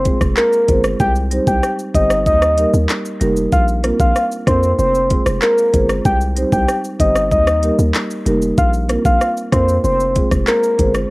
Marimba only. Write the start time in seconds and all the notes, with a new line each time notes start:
0.04 G#3 C4 F4 G#4 C5
0.68 G#3 C4 F4 G#4 C5
1.31 G3 C4 D#4 G4 C5
1.94 G3 C4 D#4 G4 C5
2.57 G3 A#3 D#4 G4 A#4
3.20 G3 A#3 D#4 G4 A#4
3.83 A#3 C4 D4 F4 A#4
4.46 A#3 C4 D4 F4 A#4
5.10 G#3 C4 F4 G#4 C5
5.73 G#3 C4 F4 G#4 C5
6.36 G3 C4 D#4 G4 C5
6.99 G3 C4 D#4 G4 C5
7.62 G3 A#3 D#4 G4 A#4
8.25 G3 A#3 D#4 G4 A#4
8.89 A#3 C4 D4 F4 A#4
9.52 A#3 C4 D4 F4 A#4
10.15 G#3 C4 F4 G#4 C5
10.78 G#3 C4 F4 G#4 C5